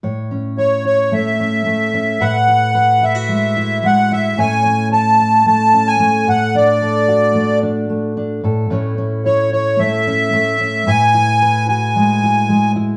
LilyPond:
<<
  \new Staff \with { instrumentName = "Accordion" } { \time 4/4 \key a \major \tempo 4 = 111 r4 cis''8 cis''8 e''2 | fis''4. e''4. fis''8 e''8 | gis''4 a''4 a''8. gis''8. fis''8 | d''2 r2 |
r4 cis''8 cis''8 e''2 | gis''4. gis''2 r8 | }
  \new Staff \with { instrumentName = "Steel-string acoustic guitar" } { \time 4/4 \key a \major << { cis''8 cis'8 e'8 e'4 cis'4 cis'8 | b'8 e'8 b'8 e'16 fis'8. e'4 e'8 | <a cis' e' cis''>8 cis'8 cis''8 e'4 cis'4 a'8 | d'8 a'8 fis'4 d'4 d'8 a'8 |
<a cis' e' cis''>8 cis'8 e'8 e'4 cis'4 cis'8 | b'8 e'8 b'8 fis'4 e'4 e'8 | } \\ { a,2 a4 a4 | a,2 gis4 gis4 | a,2 a4 a8 a,8~ | a,4. a4 a4 a,8 |
a,2 a4 a4 | a,2 gis4 gis4 | } >> }
>>